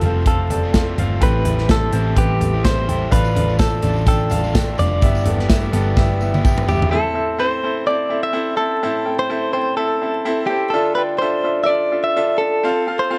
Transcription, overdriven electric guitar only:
0.01 0.63 F3 medium
0.01 0.65 A3 medium
0.01 0.64 C4 medium
0.01 0.62 F4 medium
0.63 0.73 A3 soft
0.63 0.74 C4 medium
0.63 0.74 F4 medium
0.74 0.96 F3 medium
0.74 0.97 A3 medium
0.74 0.98 C4 medium
0.74 0.98 F4 medium
0.98 1.21 F3 medium
0.98 1.22 A3 medium
0.98 1.21 C4 medium
0.98 1.22 F4 medium
1.21 1.58 A2 medium
1.21 1.59 E3 medium
1.21 1.59 G3 medium
1.21 1.58 C4 medium
1.21 1.57 E4 medium
1.58 1.92 G3 soft
1.58 1.93 C4 soft
1.58 1.93 E4 medium
1.92 2.53 E3 medium
1.92 2.54 G3 medium
1.92 2.53 C4 medium
1.92 2.52 E4 medium
2.53 2.63 G3 soft
2.53 2.64 C4 soft
2.53 2.64 E4 medium
2.63 2.86 E3 medium
2.63 2.87 G3 medium
2.63 2.88 C4 medium
2.63 2.88 E4 medium
2.87 3.11 E3 medium
2.87 3.12 G3 medium
2.87 3.12 C4 medium
2.87 3.12 E4 medium
3.11 3.49 A2 medium
3.11 3.49 D3 medium
3.11 3.49 A3 medium
3.11 3.48 D4 medium
3.11 3.47 F4 medium
3.48 3.82 A3 soft
3.48 3.83 D4 medium
3.48 3.83 F4 medium
3.82 4.53 D3 medium
3.82 4.44 A3 medium
3.82 4.44 D4 medium
3.82 4.42 F4 medium
4.43 4.53 A3 soft
4.43 4.54 D4 medium
4.43 4.54 F4 medium
4.54 4.76 D3 medium
4.54 4.77 A3 medium
4.54 4.78 D4 medium
4.54 4.78 F4 medium
4.77 5.00 D3 medium
4.77 5.02 A3 medium
4.77 5.02 D4 medium
4.77 5.02 F4 medium
5.01 5.39 G2 medium
5.01 5.39 D3 medium
5.01 5.39 E3 medium
5.01 5.39 G3 medium
5.01 5.38 B3 medium
5.01 5.37 E4 medium
5.39 5.71 E3 soft
5.39 5.72 G3 medium
5.39 5.73 B3 medium
5.39 5.73 E4 medium
5.72 6.35 E3 medium
5.72 6.34 G3 medium
5.72 6.33 B3 medium
5.72 6.33 E4 medium
6.33 6.42 E3 soft
6.33 6.43 G3 medium
6.33 6.44 B3 medium
6.33 6.44 E4 medium
6.44 6.66 E3 medium
6.44 6.67 G3 medium
6.44 6.68 B3 medium
6.44 6.68 E4 medium
6.67 6.92 E3 medium
6.67 6.92 G3 medium
6.67 6.93 B3 medium
6.67 6.93 E4 medium

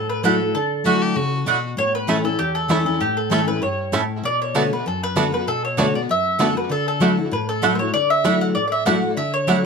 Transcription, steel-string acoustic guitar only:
0.00 0.52 A2 medium
0.23 0.39 F#3 medium
0.23 0.40 A3 medium
0.23 0.40 E4 loud
0.23 0.38 F#4 loud
0.40 0.55 E4 soft
0.40 0.54 F#4 medium
0.55 1.13 D3 medium
0.84 1.14 F#3 medium
0.84 1.15 A3 medium
0.84 1.15 E4 medium
0.84 1.15 F#4 medium
1.16 1.45 C#3 medium
1.46 1.76 B2 medium
1.77 2.36 A2 medium
2.07 2.23 E3 medium
2.07 2.24 A3 loud
2.07 2.24 C#4 medium
2.07 2.22 E4 medium
2.24 2.39 C#4 soft
2.24 2.38 E4 medium
2.39 2.98 E2 medium
2.68 2.85 E3 medium
2.68 2.85 A3 medium
2.68 2.85 C#4 medium
2.68 2.84 E4 loud
2.85 3.01 C#4 soft
2.85 3.00 E4 medium
3.00 3.59 A2 medium
3.30 3.46 E3 medium
3.30 3.47 A3 medium
3.30 3.47 C#4 medium
3.30 3.46 E4 loud
3.47 3.62 C#4 soft
3.47 3.61 E4 medium
3.62 3.91 G2 medium
3.92 4.22 A2 medium
4.24 4.82 B2 medium
4.54 4.70 D3 loud
4.54 4.70 A3 loud
4.54 4.71 B3 medium
4.54 4.70 F#4 loud
4.71 4.86 B3 soft
4.71 4.85 F#4 medium
4.86 5.44 F#2 medium
5.16 5.31 D3 medium
5.16 5.32 A3 medium
5.16 5.32 B3 loud
5.16 5.31 F#4 loud
5.32 5.47 B3 soft
5.32 5.46 F#4 soft
5.47 6.06 B2 medium
5.77 5.93 D3 medium
5.77 5.94 A3 medium
5.77 5.94 B3 loud
5.77 5.93 F#4 loud
5.94 6.09 B3 soft
5.94 6.08 F#4 medium
6.09 6.68 F#2 medium
6.39 6.55 D3 medium
6.39 6.55 A3 loud
6.39 6.55 B3 loud
6.39 6.54 F#4 loud
6.55 6.70 B3 soft
6.55 6.69 F#4 medium
6.69 7.29 D3 medium
7.00 7.16 F#3 medium
7.00 7.17 A3 medium
7.00 7.17 E4 medium
7.00 7.16 F#4 loud
7.17 7.32 E4 soft
7.17 7.31 F#4 medium
7.31 7.90 A2 medium
7.62 7.78 F#3 medium
7.62 7.78 A3 medium
7.62 7.79 E4 medium
7.62 7.78 F#4 loud
7.79 7.94 E4 soft
7.79 7.93 F#4 medium
7.94 8.53 D3 medium
8.24 8.54 F#3 medium
8.24 8.54 A3 medium
8.24 8.54 E4 medium
8.24 8.55 F#4 loud
8.55 9.14 A2 medium
8.85 9.02 F#3 loud
8.85 9.02 A3 loud
8.85 9.02 E4 loud
8.85 9.01 F#4 loud
9.02 9.17 E4 soft
9.02 9.16 F#4 medium
9.17 9.66 D3 medium
9.47 9.63 F#3 medium
9.47 9.64 A3 medium
9.47 9.64 E4 medium
9.47 9.62 F#4 loud

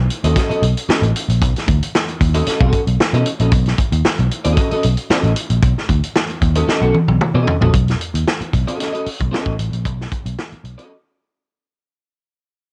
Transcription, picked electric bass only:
0.24 0.33 D#2 loud
0.50 muted picked electric bass stroke medium
0.62 0.73 B1 loud
0.89 muted picked electric bass stroke medium
1.02 1.11 A1 loud
1.28 1.41 A#1 loud
1.41 1.52 B1 loud
1.68 1.78 D2 loud
2.21 2.40 D#2 loud
2.47 muted picked electric bass stroke soft
2.61 2.70 B1 medium
2.87 2.96 B1 medium
3.13 3.23 B2 loud
3.40 3.49 A#1 medium
3.52 3.72 B1 loud
3.92 4.01 D#2 medium
4.06 muted picked electric bass stroke soft
4.19 4.28 B1 medium
4.45 4.54 D#2 loud
4.72 muted picked electric bass stroke medium
4.85 4.95 B1 medium
5.10 muted picked electric bass stroke medium
5.23 5.33 A1 loud
5.50 5.59 A#1 loud
5.62 5.73 B1 loud
5.89 5.99 D2 medium
6.42 6.62 D#2 loud
6.68 muted picked electric bass stroke soft
6.82 6.91 B1 medium
7.08 7.18 B1 medium
7.34 7.44 B2 loud
7.61 7.71 A#1 loud
7.74 7.94 B1 loud
8.14 8.23 D#2 medium
8.41 muted picked electric bass stroke soft
8.54 8.64 B1 medium
9.07 muted picked electric bass stroke soft
9.20 9.30 B1 medium
9.46 9.56 A1 medium
9.59 9.69 A1 loud
9.72 9.86 A#1 medium
9.86 10.05 B1 loud
10.26 10.35 B1 medium
10.52 muted picked electric bass stroke soft
10.64 10.75 B1 medium

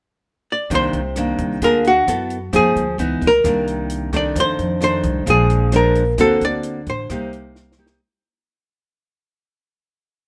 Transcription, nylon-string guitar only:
0.70 1.59 C3 medium
0.70 1.00 D#3 medium
0.70 1.00 A#3 medium
0.70 1.00 D4 medium
1.17 1.60 D#3 medium
1.17 1.60 A#3 medium
1.17 1.61 D4 medium
1.62 2.05 D3 medium
1.62 1.91 A#3 medium
1.62 1.91 F4 medium
1.62 1.92 G#4 medium
2.07 2.37 B3 medium
2.07 2.37 E4 medium
2.07 2.38 A4 medium
2.53 2.96 F3 medium
2.53 2.84 A#3 medium
2.53 2.84 D#4 medium
2.53 2.84 G#4 medium
2.99 3.28 E3 medium
2.99 3.29 B3 medium
2.99 3.29 D#4 medium
3.44 4.33 C3 soft
3.44 4.09 D#3 medium
3.44 4.09 A#3 medium
3.44 4.10 D4 medium
4.13 4.78 D#3 medium
4.13 4.78 A3 medium
4.13 4.78 D4 medium
4.35 5.25 F2 medium
4.81 5.25 D#3 medium
4.81 5.25 A3 medium
4.81 5.26 D4 medium
5.26 6.16 A#2 medium
5.26 5.69 F3 soft
5.26 5.69 G#3 medium
5.26 5.69 D4 soft
5.73 6.02 F3 medium
5.73 6.02 G#3 medium
5.73 6.02 D4 medium
6.19 7.08 D3 medium
6.19 6.80 A#3 soft
6.19 6.80 C4 soft
6.19 6.80 F#4 medium
7.10 7.99 C3 medium
7.10 7.75 A#3 medium
7.10 7.75 D#4 medium
7.10 7.75 G4 medium
7.78 7.99 A#3 medium
7.78 7.99 D#4 medium
7.78 8.00 G4 medium

